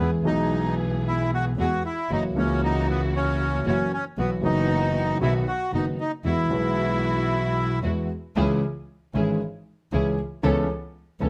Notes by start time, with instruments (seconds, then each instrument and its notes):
0.00 grand piano E2 E3 G#3 B3 G#4, double bass E2, bandoneon B3, string section B3 E4 G#4
0.23 double bass B1, grand piano B1 B2 E3 G#3 B3 G#4, string section E3 B3 G#4, bandoneon D#4
1.08 bandoneon E4
1.34 bandoneon F#4
1.57 double bass E2, grand piano E2 E3 G#3 B3 G#4, string section B3 E4 G#4, bandoneon F#4
1.85 bandoneon E4
2.10 double bass F#1, grand piano F#2 E3 F#3 A#3 C#4 F#4, string section A#3 E4 F#4, bandoneon D#4
2.35 double bass C#2, grand piano C#2 C#3 E3 A#3 C#4 F#4, string section A#3 E4 F#4, bandoneon C#4
2.64 bandoneon D#4
2.90 bandoneon B3
3.16 bandoneon C#4
3.66 double bass F#1, grand piano F#2 E3 F#3 A#3 C#4 F#4, string section A#3 E4 F#4, bandoneon C#4
3.93 bandoneon C#4
4.17 double bass B1, grand piano B1 B2 E3 F#3 B3 F#4, string section B3 E4 F#4, bandoneon B3
4.41 double bass F#1, grand piano F#1 F#2 E3 F#3 B3, string section E3 B3 F#4, bandoneon D#4
4.45 grand piano F#4
5.21 double bass B1, grand piano B1 B2 D#3 F#3 B3 F#4, string section B3 D#4 F#4, bandoneon E4
5.48 bandoneon F#4
5.72 double bass F#1, grand piano F#1 F#2 D#3 F#3 B3 F#4, string section B3 D#4 F#4, bandoneon D#4
6.00 bandoneon D#4
6.24 double bass E2, grand piano E2 E3 G#3 B3 F#4, string section G#3 E4 F#4, bandoneon E4
6.49 double bass B1, grand piano B1 B2 E3 G#3 B3, string section G#3 E4 F#4
6.53 grand piano F#4
7.82 double bass E2, grand piano E2 E3 G#3 B3 F#4, string section G#3 E4 F#4
8.36 double bass C#2, grand piano C#2 C#3 E3 G#3 C#4 G#4, string section C#4 E4 G#4
9.14 grand piano G#1 G#2 E3 G#3 C#4 G#4, double bass G#1, string section C#4 E4 G#4
9.92 double bass C#2, grand piano C#2 C#3 E3 G#3 C#4 G#4, string section C#4 E4 G#4
10.43 grand piano C#2 C#3 E3 B3 C#4 A4, double bass C#2, string section B3 C#4 A4
11.20 double bass C#2, grand piano C#2 C#3 E3 B3 C#4 A4, string section B3 C#4 A4